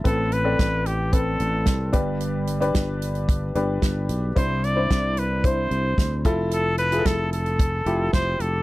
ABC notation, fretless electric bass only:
X:1
M:4/4
L:1/8
Q:1/4=111
K:Gmix
V:1 name="Fretless electric bass" clef=bass
A,,,2 A,,,3 A,,, C,, G,,,- | G,,,2 G,,,3 G,,, G,,, B,,, | C,,2 C,,3 C,, D,, F,,,- | F,,,2 F,,,3 F,,, F,,, F,,, |]